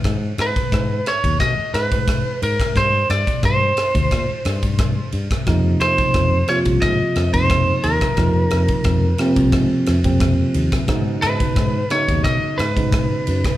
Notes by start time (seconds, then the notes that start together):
0.04 G#2, kick, cross-stick, ride
0.38 G#2 B4, cross-stick, ride
0.56 kick, ride
0.72 G#2, kick, cross-stick, ride
1.06 C#5, cross-stick, ride
1.24 D#2, kick, ride
1.40 B2 D#5, kick, cross-stick, ride
1.58 muted fretless electric bass stroke
1.74 G#2 B4, cross-stick, ride
1.92 kick, ride
2.08 kick, cross-stick, ride
2.42 G#2 A#4, ride
2.60 kick, cross-stick, ride
2.76 G2 C5, kick, cross-stick, ride
3.10 G2 D5, cross-stick, ride
3.27 kick, ride
3.43 G2 C5, kick, cross-stick, ride
3.77 cross-stick, ride
3.95 D2, kick, ride
4.11 A#2, kick, cross-stick, ride
4.30 muted fretless electric bass stroke
4.45 G2, cross-stick, ride
4.63 kick, ride
4.79 kick, cross-stick, ride
5.12 G2, ride
5.31 kick, cross-stick, ride
5.46 F2 C3 F3 A#3 D#4, kick, cross-stick, ride
5.81 F2 C5, cross-stick, ride
5.98 kick, ride
6.14 F2, kick, cross-stick, ride
6.48 C3 F3 A#3 F4 C#5, cross-stick, ride
6.65 C2, kick, ride
6.82 G#2 D#5, kick, cross-stick, ride
7.01 muted fretless electric bass stroke
7.16 F2, cross-stick, ride
7.33 C3 F3 A#3 D#4 C5, kick, ride
7.50 kick, cross-stick, ride
7.84 D#2 A#4, ride
8.01 kick, cross-stick, ride
8.17 F2 C3 F3 A#3 D#4, kick, cross-stick, ride
8.51 F2, cross-stick, ride
8.68 kick, ride
8.84 F2, kick, cross-stick, ride
9.18 C3 F3 A#3 C4, cross-stick, ride
9.36 C2, kick, ride
9.52 G#2 G#4, kick, cross-stick, ride
9.72 muted fretless electric bass stroke
9.86 F2, cross-stick, ride
10.04 C3 F3 A#3 C4, kick, ride
10.20 kick, cross-stick, ride
10.54 D#2, ride
10.72 kick, cross-stick, ride
10.88 G#2 C#3 F#3 B3 D#4, kick, cross-stick, ride
11.22 G#2 B4, cross-stick, ride
11.40 kick, ride
11.56 G#2, kick, cross-stick, ride
11.90 C#3 F#3 B3 D#4 C#5, cross-stick, ride
12.08 D#2, kick, ride
12.24 B2 D#5, kick, cross-stick, ride
12.43 muted fretless electric bass stroke
12.58 G#2 B4, cross-stick, ride
12.77 C#3 F#3 B3 D#4, kick, ride
12.93 kick, cross-stick, ride
13.27 F#2, ride
13.44 kick, cross-stick, ride